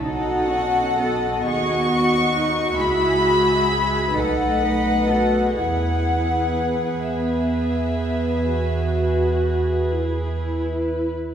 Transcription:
<<
  \new Staff \with { instrumentName = "Violin section" } { \time 12/8 \key e \major \tempo 4. = 41 fis''4. cis'''4. b''4. fis''4. | fis''4. e''2. r4. | }
  \new Staff \with { instrumentName = "Violin section" } { \time 12/8 \key e \major << { dis''2. e''4. dis''4. | b'1. | } \\ { a'4. fis'4. gis'4. b'4. | b'1. | } >> }
  \new Staff \with { instrumentName = "Cello section" } { \time 12/8 \key e \major dis'8 fis'8 a'8 gis'8 fis'8 dis'8 e'8 fis'8 gis'8 a'8 b'8 a'8 | gis'1~ gis'4~ gis'16 r8. | }
  \new Staff \with { instrumentName = "Viola section" } { \time 12/8 \key e \major << { fis'4. fis'2. dis'8 dis'8 fis'8 | e'4. b4. fis'4. e'4. | } \\ { dis'8 cis'8 b2 gis4. a4. | b4. r1 r8 | } >> }
  \new Staff \with { instrumentName = "Double bass section" } { \clef bass \time 12/8 \key e \major b,,4. dis,4. cis,4. b,,4. | e,1. | }
>>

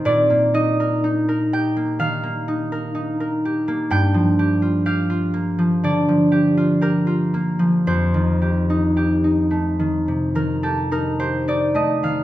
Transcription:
\new Staff \with { instrumentName = "Harp" } { \time 4/4 \key f \mixolydian \tempo 4 = 61 << { <bes' d''>8 ees''4 g''8 f''2 | g''4 f''4 d''4 bes'4 | c''2~ c''16 bes'16 a'16 bes'16 c''16 d''16 ees''16 f''16 | } \\ { <bes, ees' g'>16 bes16 ees'16 bes'16 ees'16 bes'16 g'16 bes16 ees16 bes16 ees'16 bes'16 ees'16 bes'16 g'16 bes16 | g,16 f16 g'16 f'16 g'16 f'16 bes16 f16 d16 f16 g'16 f'16 g'16 f'16 bes16 f16 | f,16 ees16 g'16 ees'16 g'16 ees'16 a16 ees16 c16 ees16 g'16 ees'16 g'16 ees'16 a16 ees16 | } >> }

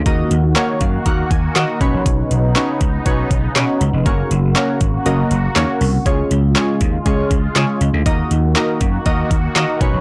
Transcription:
<<
  \new Staff \with { instrumentName = "Synth keys" } { \time 4/4 \key dis \minor \tempo 4 = 120 << { r4. eis''8 fis''8 gis''8 fis''8 b''8 | r1 | r1 | r1 |
r1 | } \\ { <ais dis' fis' ais' dis''>8 r8 <ais dis' fis' ais' cis''>8 r8 <ais dis' fis' ais' fis''>8 r8 <ais dis' fis' ais' dis''>8 <cis' dis' fis' b' cis''>8~ | <cis' dis' fis' b' cis''>8 r8 <cis' dis' fis' b' cis''>8 r8 <cis' dis' fis' b' cis''>8 r8 <cis' dis' fis' b' cis''>8 r8 | <ais cis' fis' ais' cis''>8 r8 <ais cis' fis' ais' cis''>8 r8 <ais cis' fis' ais' dis''>8 r8 <ais cis' fis' ais' cis''>8 r8 | <gis cis' eis' gis' cis''>8 r8 <gis cis' eis' gis' cis''>8 r8 <gis cis' eis' gis' cis''>8 r8 <gis cis' eis' gis' cis''>8 r8 |
<ais dis' fis' ais' dis''>8 r8 <ais dis' fis' ais' dis''>8 r8 <ais dis' fis' ais' dis''>8 r8 <ais dis' fis' ais' dis''>8 <cis' dis' fis' b' cis''>8 | } >> }
  \new Staff \with { instrumentName = "Analog synth pad" } { \time 4/4 \key dis \minor << { <ais fis'>2.~ <ais fis'>8 <b dis'>8~ | <b dis'>1 | <ais fis'>1 | <gis eis'>1 |
<ais fis'>2.~ <ais fis'>8 <b dis'>8 | } \\ { dis2.~ dis8 cis8~ | cis1~ | cis1~ | cis1 |
dis2.~ dis8 cis8 | } >> }
  \new Staff \with { instrumentName = "Slap bass" } { \clef bass \time 4/4 \key dis \minor dis,8 dis,8. r16 fis,8 dis,8 dis,8 dis16 r16 b,,16 ais,,16 | b,,8 b,,8. r16 cis,8 b,,8 b,,8 b,16 r16 cis,16 eis,,16 | fis,,8 fis,,8. r16 gis,,8 fis,,8 fis,,8 dis,16 r16 bis,,8 | cis,8 cis,8. r16 dis,8 cis,8 cis,8 cis16 r16 cis,16 d,16 |
dis,8 dis,8. r16 fis,8 dis,8 dis,8 dis16 r16 b,,16 ais,,16 | }
  \new DrumStaff \with { instrumentName = "Drums" } \drummode { \time 4/4 <hh bd>8 hh8 <hc hh sn>8 <hh bd>8 <hh bd>8 <hh bd>8 <hc hh sn>8 <hh bd>8 | <hh bd>8 hh8 <hc hh sn>8 <hh bd>8 <hh bd>8 <hh bd>8 <hc hh sn>8 hh8 | <hh bd>8 hh8 <hc hh sn>8 <hh bd>8 hh8 hh8 <hc hh sn>8 hho8 | <hh bd>8 hh8 <hc hh sn>8 <hh bd>8 <hh bd>8 <hh bd>8 <hc hh sn>8 hh8 |
<hh bd>8 hh8 <hc hh sn>8 <hh bd>8 <hh bd>8 <hh bd>8 <hc hh sn>8 <hh bd>8 | }
>>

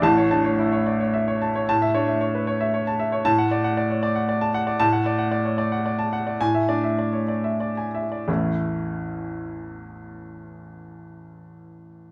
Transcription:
<<
  \new Staff \with { instrumentName = "Grand piano" } { \time 6/8 \key a \major \tempo 4. = 73 << { a''8 r2 r8 | a''8 r2 r8 | a''8 r2 r8 | a''8 r2 r8 |
gis''8 r2 r8 | <a,, e, e a cis' e'>2.~ | <a,, e, e a cis' e'>2. | } \\ { r16 cis''16 a''16 cis''16 e'16 cis''16 d''16 cis''16 e''16 cis''16 a''16 cis''16 | r16 e''16 cis''16 e''16 cis''16 b'16 cis''16 e''16 cis''16 a''16 e''16 cis''16 | r16 fis''16 d''16 fis''16 d''16 cis''16 d''16 fis''16 d''16 a''16 fis''16 d''16 | r16 fis''16 d''16 fis''16 d''16 cis''16 d''16 fis''16 d''16 a''16 fis''16 d''16 |
r16 e''16 d''16 e''16 d''16 cis''16 d''16 e''16 d''16 gis''16 e''16 d''16 | r2. | r2. | } >> }
  \new Staff \with { instrumentName = "Grand piano" } { \clef bass \time 6/8 \key a \major <a,, a,>8 d'16 r2 r16 | a,8 d'16 r2 r16 | a,2. | a,2. |
a,8 d'16 r2 r16 | r2. | r2. | }
>>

